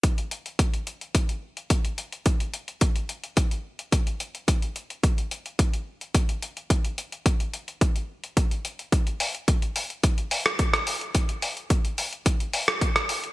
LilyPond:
\new DrumStaff \with { instrumentName = "Drums" } \drummode { \time 4/4 \tempo 4 = 108 <hh bd>16 hh16 hh16 hh16 <hh bd>16 hh16 hh16 hh16 <hh bd>16 hh8 hh16 <hh bd>16 hh16 hh16 hh16 | <hh bd>16 hh16 hh16 hh16 <hh bd>16 hh16 hh16 hh16 <hh bd>16 hh8 hh16 <hh bd>16 hh16 hh16 hh16 | <hh bd>16 hh16 hh16 hh16 <hh bd>16 hh16 hh16 hh16 <hh bd>16 hh8 hh16 <hh bd>16 hh16 hh16 hh16 | <hh bd>16 hh16 hh16 hh16 <hh bd>16 hh16 hh16 hh16 <hh bd>16 hh8 hh16 <hh bd>16 hh16 hh16 hh16 |
<hh bd>16 hh16 hho16 hh16 <hh bd>16 hh16 hho16 hh16 <hh bd>16 hh16 hho16 <hh ss>16 <hh bd>16 <hh ss>16 hho16 hh16 | <hh bd>16 hh16 hho16 hh16 <hh bd>16 hh16 hho16 hh16 <hh bd>16 hh16 hho16 <hh ss>16 <hh bd>16 <hh ss>16 hho16 hh16 | }